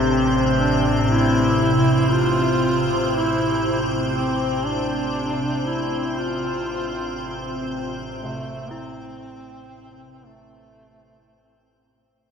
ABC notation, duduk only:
X:1
M:4/4
L:1/16
Q:1/4=58
K:Am
V:1 name="Duduk"
z2 D2 E4 F4 E3 z | C2 D4 E2 F6 z2 | A,2 C6 A,6 z2 |]